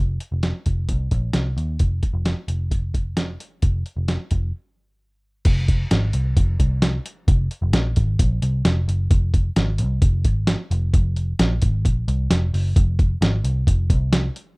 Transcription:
0.00 0.17 F1 loud
0.20 closed hi-hat medium
0.32 0.51 F1 medium
0.43 snare medium
0.43 closed hi-hat medium
0.66 0.90 F1 medium
0.66 kick medium
0.66 closed hi-hat medium
0.89 1.08 C2 medium
0.89 kick medium
0.89 closed hi-hat medium
1.11 1.31 A#1 medium
1.11 kick medium
1.11 closed hi-hat medium
1.33 1.53 C2 medium
1.33 snare loud
1.33 closed hi-hat medium
1.57 1.76 D#2 medium
1.57 closed hi-hat medium
1.79 1.99 F1 medium
1.79 kick loud
1.79 closed hi-hat medium
2.03 kick medium
2.03 closed hi-hat medium
2.13 2.33 F1 medium
2.25 snare medium
2.25 closed hi-hat medium
2.48 3.36 F1 medium
2.48 closed hi-hat medium
2.71 kick medium
2.71 closed hi-hat medium
2.94 kick medium
2.94 closed hi-hat medium
3.17 snare loud
3.17 closed hi-hat medium
3.40 closed hi-hat medium
3.62 3.82 F1 medium
3.62 kick loud
3.62 closed hi-hat medium
3.86 closed hi-hat medium
3.97 4.16 F1 medium
4.08 snare medium
4.08 closed hi-hat medium
4.31 4.51 F1 medium
4.31 kick medium
4.31 closed hi-hat medium
5.45 5.84 F1 loud
5.45 kick loud
5.45 closed hi-hat medium
5.45 crash medium
5.68 kick medium
5.68 closed hi-hat medium
5.91 6.11 G#1 medium
5.91 snare loud
5.91 closed hi-hat medium
6.13 6.33 C2 medium
6.13 closed hi-hat medium
6.36 6.56 F1 medium
6.36 kick loud
6.36 closed hi-hat medium
6.59 6.98 C2 medium
6.59 kick medium
6.59 closed hi-hat medium
6.82 snare loud
6.82 closed hi-hat medium
7.06 closed hi-hat medium
7.28 7.47 F1 loud
7.28 kick loud
7.28 closed hi-hat medium
7.51 closed hi-hat medium
7.62 7.73 F1 loud
7.73 7.93 A#1 medium
7.73 snare loud
7.73 closed hi-hat medium
7.96 8.16 G#1 medium
7.96 kick medium
7.96 closed hi-hat medium
8.19 8.39 A#1 medium
8.19 kick loud
8.19 closed hi-hat medium
8.42 8.62 C2 medium
8.42 closed hi-hat medium
8.65 8.85 F1 medium
8.65 snare loud
8.65 closed hi-hat medium
8.88 9.07 F#1 medium
8.88 closed hi-hat medium
9.10 9.49 F1 loud
9.10 kick loud
9.10 closed hi-hat medium
9.34 kick medium
9.34 closed hi-hat medium
9.56 9.81 G#1 medium
9.56 snare medium
9.56 closed hi-hat medium
9.78 9.99 C2 medium
9.78 closed hi-hat medium
10.02 10.25 F1 medium
10.02 kick loud
10.02 closed hi-hat medium
10.25 10.54 G#1 medium
10.25 kick medium
10.25 closed hi-hat medium
10.47 snare loud
10.47 closed hi-hat medium
10.71 10.90 F1 loud
10.71 closed hi-hat medium
10.94 11.32 F1 loud
10.94 kick loud
10.94 closed hi-hat medium
11.16 closed hi-hat medium
11.39 11.59 A#1 medium
11.39 snare loud
11.39 closed hi-hat medium
11.62 11.85 G#1 medium
11.62 kick medium
11.62 closed hi-hat medium
11.85 12.04 A#1 medium
11.85 kick medium
11.85 closed hi-hat medium
12.08 12.27 C2 medium
12.08 closed hi-hat medium
12.30 12.50 F1 medium
12.30 snare loud
12.30 closed hi-hat medium
12.54 12.73 F#1 medium
12.54 open hi-hat medium
12.76 13.15 F1 loud
12.76 kick loud
12.76 closed hi-hat medium
12.99 kick loud
12.99 closed hi-hat medium
13.21 13.41 G#1 medium
13.21 snare loud
13.21 closed hi-hat medium
13.44 13.64 C2 medium
13.44 closed hi-hat medium
13.67 13.91 F1 medium
13.67 kick medium
13.67 closed hi-hat loud
13.90 14.29 C2 medium
13.90 kick medium
13.90 closed hi-hat medium
14.13 snare loud
14.13 closed hi-hat medium
14.36 closed hi-hat medium

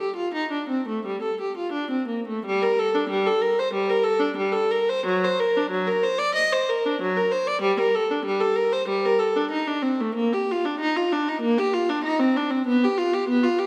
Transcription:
0.00 0.15 G4 medium
0.16 0.32 F4 medium
0.34 0.50 D#4 medium
0.52 0.68 D4 soft
0.69 0.86 C4 medium
0.88 1.04 A3 medium
1.06 1.21 G3 medium
1.22 1.38 A4 medium
1.41 1.56 G4 medium
1.57 1.73 F4 medium
1.72 1.90 D4 medium
1.91 2.08 C4 soft
2.08 2.26 A#3 soft
2.28 2.43 A3 medium
2.46 2.60 G3 medium
2.62 2.77 A#4 medium
2.79 2.93 A4 medium
2.95 3.09 D4 medium
3.10 3.24 G3 medium
3.26 3.41 A4 medium
3.41 3.56 A#4 medium
3.59 3.73 C5 medium
3.74 3.88 G3 medium
3.89 4.04 A#4 medium
4.04 4.19 A4 medium
4.20 4.35 D4 medium
4.37 4.52 G3 medium
4.53 4.69 A4 medium
4.71 4.87 A#4 medium
4.89 5.05 C5 medium
5.06 5.22 F#3 medium
5.25 5.40 C5 medium
5.39 5.55 A#4 medium
5.57 5.72 D4 medium
5.71 5.86 F#3 medium
5.87 6.03 A#4 medium
6.04 6.19 C5 medium
6.19 6.34 D5 medium
6.35 6.50 D#5 medium
6.52 6.67 C5 medium
6.69 6.83 A#4 medium
6.86 7.00 D4 medium
7.01 7.15 F#3 medium
7.17 7.31 A#4 medium
7.31 7.46 C5 medium
7.47 7.62 D5 medium
7.62 7.76 G3 medium
7.81 7.94 A#4 medium
7.95 8.09 A4 medium
8.11 8.25 D4 medium
8.26 8.40 G3 medium
8.40 8.55 A4 medium
8.56 8.71 A#4 medium
8.73 8.87 C5 medium
8.88 9.02 G3 medium
9.05 9.19 A#4 medium
9.19 9.33 A4 medium
9.36 9.50 D4 medium
9.51 9.65 D#4 medium
9.67 9.82 D4 medium
9.82 9.98 C4 medium
10.01 10.16 A3 medium
10.15 10.31 A#3 medium
10.33 10.49 G4 medium
10.51 10.65 F4 medium
10.65 10.80 D4 medium
10.80 10.95 D#4 medium
10.97 11.11 F4 medium
11.13 11.27 D4 medium
11.28 11.42 D#4 medium
11.42 11.56 A#3 medium
11.58 11.73 G4 medium
11.73 11.88 F4 medium
11.90 12.04 D4 medium
12.04 12.19 D#4 medium
12.20 12.35 C4 medium
12.36 12.51 D4 medium
12.51 12.66 C4 medium
12.67 12.82 B3 medium
12.84 12.98 G4 medium
12.98 13.13 F4 medium
13.14 13.29 G4 medium
13.29 13.43 B3 medium
13.44 13.59 F4 medium
13.59 13.67 G4 medium

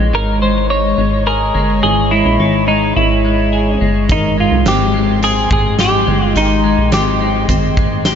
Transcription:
0.00 0.13 A#1 medium
0.00 1.82 E3 medium
0.00 0.41 G#3 soft
0.00 8.15 G#3 medium
0.00 4.06 C#5 medium
0.00 4.06 D#5 medium
0.00 4.06 C#6 medium
0.13 0.94 G#1 loud
0.13 0.70 D#4 medium
0.13 0.42 A#4 medium
0.42 0.97 G#3 medium
0.42 0.70 C5 medium
0.70 2.39 D#4 medium
0.70 1.23 C#5 loud
0.98 1.52 G#1 medium
0.98 1.54 G#3 medium
1.26 3.52 G#4 medium
1.26 1.83 A#4 medium
1.54 1.82 G1 medium
1.54 2.11 G#3 soft
1.83 2.23 G#1 medium
1.83 4.09 E3 medium
1.83 2.12 G#4 medium
2.11 2.68 G#3 soft
2.11 2.67 E4 medium
2.25 2.39 A#1 medium
2.39 2.93 G#1 loud
2.39 4.65 D#4 medium
2.68 3.24 G#3 medium
2.68 2.96 D#4 medium
2.96 3.77 G#1 loud
2.96 3.77 E4 medium
3.25 3.81 G#3 medium
3.53 5.79 G#4 medium
3.81 4.08 G1 medium
3.81 4.37 G#3 soft
4.09 4.50 G#1 loud
4.09 6.35 D#3 medium
4.09 4.40 D#4 medium
4.09 5.36 A#4 medium
4.09 8.15 D#5 medium
4.09 8.15 G5 medium
4.09 8.15 C6 medium
4.09 kick loud
4.09 closed hi-hat medium
4.38 4.94 G#3 soft
4.38 4.68 F4 medium
4.52 4.65 C2 medium
4.66 5.47 G#1 loud
4.66 5.21 C4 medium
4.66 5.23 G4 medium
4.66 snare loud
4.66 closed hi-hat medium
4.94 5.50 G#3 medium
5.23 6.91 C4 medium
5.23 5.51 G#4 loud
5.23 closed hi-hat medium
5.51 6.05 G#1 medium
5.51 6.07 G#3 soft
5.51 5.80 G#4 medium
5.51 kick medium
5.79 8.04 G4 medium
5.79 6.25 G4 medium
5.79 snare medium
5.79 closed hi-hat medium
6.07 6.34 G1 medium
6.07 6.63 G#3 soft
6.25 6.38 F4 medium
6.35 6.76 G#1 medium
6.35 8.15 D#3 medium
6.35 6.89 D#4 medium
6.35 closed hi-hat medium
6.64 7.20 G#3 medium
6.78 6.92 A#1 loud
6.92 7.46 G#1 loud
6.92 7.48 C4 medium
6.92 7.46 G4 medium
6.92 snare medium
6.92 closed hi-hat medium
7.21 7.77 G#3 medium
7.49 8.15 G#1 loud
7.49 8.15 C4 soft
7.49 kick medium
7.49 closed hi-hat medium
7.77 8.15 G#3 medium
7.77 kick medium
8.05 8.15 G4 medium
8.05 snare medium
8.05 closed hi-hat medium

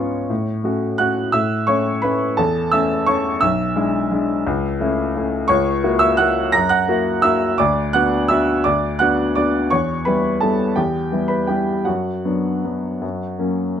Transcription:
0.00 0.32 G#2 medium
0.00 0.32 B3 soft
0.00 0.33 C#4 soft
0.00 0.32 F4 soft
0.00 0.77 C#5 medium
0.00 0.81 C#6 medium
0.30 0.63 A2 medium
0.64 0.96 A3 soft
0.64 0.96 C#4 soft
0.64 0.96 F#4 soft
0.98 1.31 A3 soft
0.98 1.31 C#4 soft
0.98 1.31 F#4 medium
0.98 1.32 F#5 medium
0.98 1.33 F#6 medium
1.32 1.67 A2 medium
1.32 1.65 E5 medium
1.32 1.67 E6 medium
1.67 2.00 A3 soft
1.67 2.00 C#4 soft
1.67 2.01 E4 medium
1.67 2.01 C#5 medium
1.67 2.03 C#6 medium
2.02 2.35 A3 soft
2.02 2.35 C#4 soft
2.02 2.35 E4 medium
2.02 2.35 B4 medium
2.02 2.37 B5 medium
2.37 2.72 E2 medium
2.37 2.70 A4 medium
2.37 2.72 A5 medium
2.72 3.04 A3 soft
2.72 3.05 C#4 medium
2.72 3.05 E4 medium
2.72 3.05 E5 medium
2.72 3.07 E6 loud
3.06 3.39 A3 soft
3.06 3.39 C#4 medium
3.06 3.39 E4 medium
3.06 3.40 C#5 medium
3.06 3.41 C#6 medium
3.41 3.75 B1 medium
3.41 4.93 E5 medium
3.41 4.97 E6 loud
3.76 4.08 G#3 medium
3.76 4.08 D4 medium
3.76 4.08 E4 medium
4.11 4.42 G#3 medium
4.11 4.43 D4 medium
4.11 4.43 E4 medium
4.47 4.79 C#2 medium
4.80 5.12 A3 medium
4.80 5.12 C#4 medium
4.80 5.12 E4 medium
5.16 5.47 A3 medium
5.16 5.47 C#4 soft
5.16 5.47 E4 medium
5.48 5.82 C#2 medium
5.48 5.97 C#5 medium
5.48 6.00 C#6 loud
5.84 6.16 A#3 medium
5.84 6.16 E4 medium
5.84 6.16 F#4 medium
5.99 6.17 E5 medium
5.99 6.18 E6 loud
6.17 6.51 A#3 medium
6.17 6.51 E4 medium
6.17 6.51 F#4 medium
6.17 6.51 F#5 medium
6.17 6.53 F#6 medium
6.52 6.88 F#2 medium
6.52 6.70 A#5 medium
6.52 6.70 A#6 loud
6.69 7.20 F#5 medium
6.69 7.24 F#6 loud
6.88 7.21 A#3 medium
6.88 7.21 E4 medium
6.88 7.21 F#4 medium
7.22 7.56 A#3 soft
7.22 7.56 E4 soft
7.22 7.56 F#4 medium
7.22 7.57 E5 medium
7.22 7.59 E6 loud
7.58 7.94 D2 medium
7.58 7.92 D5 medium
7.58 7.94 D6 medium
7.93 8.27 B3 medium
7.93 8.27 D4 medium
7.93 8.28 F#4 medium
7.93 8.28 F#5 medium
7.93 8.30 F#6 medium
8.28 8.62 B3 soft
8.28 8.63 D4 soft
8.28 8.63 F#4 medium
8.28 8.63 E5 medium
8.28 8.65 E6 medium
8.64 8.99 D2 medium
8.64 8.98 D5 medium
8.64 9.00 D6 medium
8.99 9.33 B3 medium
8.99 9.33 D4 medium
8.99 9.34 F#4 medium
8.99 9.34 F#5 medium
8.99 9.36 F#6 medium
9.35 9.69 B3 soft
9.35 9.69 D4 soft
9.35 9.69 F#4 soft
9.35 9.69 D5 medium
9.35 9.71 D6 medium
9.70 10.06 E2 medium
9.70 10.04 C#5 medium
9.70 10.06 C#6 medium
10.05 10.39 G3 medium
10.05 10.39 B3 soft
10.05 10.40 E4 medium
10.05 10.40 B4 medium
10.05 10.42 B5 medium
10.41 10.74 G3 soft
10.41 10.74 B3 soft
10.41 10.74 E4 soft
10.41 10.74 A4 medium
10.41 10.76 A5 medium
10.76 11.11 E2 medium
10.76 11.26 G4 medium
10.76 11.29 G5 medium
11.12 11.45 G3 soft
11.12 11.45 B3 soft
11.12 11.46 E4 medium
11.28 11.47 B4 medium
11.28 11.48 B5 medium
11.47 11.83 G3 soft
11.47 11.83 B3 soft
11.47 11.84 E4 soft
11.47 11.84 G4 medium
11.47 11.86 G5 medium
11.85 12.24 F#2 medium
11.85 13.74 F#4 soft
11.85 13.77 F#5 medium
12.25 12.61 F#3 soft
12.25 12.61 B3 soft
12.25 12.61 D4 soft
12.64 12.98 F#3 soft
12.64 12.99 B3 soft
12.64 12.99 D4 soft
13.02 13.38 F#2 medium
13.39 13.74 F#3 soft
13.39 13.74 A#3 soft
13.39 13.74 C#4 soft

